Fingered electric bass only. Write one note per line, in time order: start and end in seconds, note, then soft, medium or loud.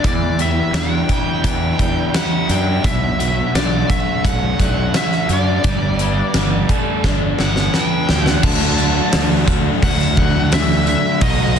0.05 0.60 E2 medium
0.73 1.02 E2 loud
1.44 1.72 E2 medium
1.80 2.08 E2 medium
2.49 2.77 F#2 medium
2.84 3.40 B1 medium
3.54 3.83 B1 medium
4.25 4.53 B1 medium
4.60 4.88 B1 medium
5.29 5.57 F#2 medium
5.64 6.20 G1 medium
6.35 6.63 G1 medium
7.04 7.32 G1 medium
7.40 7.67 G1 medium
8.09 8.37 D2 medium
8.43 8.99 D2 loud
9.14 9.69 D2 loud
9.83 10.93 D2 loud
11.22 11.59 B1 loud